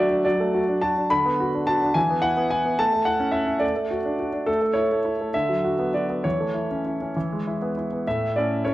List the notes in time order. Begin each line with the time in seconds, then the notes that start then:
Already playing: F#3 A3 D4 F#4 D5 E5
0.10 D4
0.25 F#3 D5
0.40 A3
0.54 F#4
0.69 D4
0.81 F#4 A5
0.98 D4
1.10 D3 B5
1.25 B3
1.40 F#4
1.54 D4
1.67 F#4 A5
1.82 D4
1.94 E3 G#5
2.10 B3
2.22 E4 F#5
2.37 B3
2.50 E4 G#5
2.65 B3
2.79 A3 A5
2.93 A3
3.05 E4 F#5
3.20 C#4
3.32 E4 E5
3.46 C#4
3.59 A3 D5
3.76 A3
3.91 F#4
4.05 D4
4.20 F#4
4.33 D4
4.46 A3 A4
4.62 A3
4.74 E4 C#5
4.92 A3
5.05 E4
5.21 A3
5.34 D3 E5
5.49 F#3
5.65 F#4
5.79 B3
5.94 F#4 D5
6.09 B3
6.24 E3 C#5
6.40 A3
6.54 E4
6.71 C#4
6.85 E4
7.02 C#4
7.16 E3
7.32 G#3
7.47 E4
7.62 B3
7.77 E4
7.93 B3
8.07 A2 E5
8.36 A3 C#4 E4 D5
8.65 A3 C#4 E4 C#5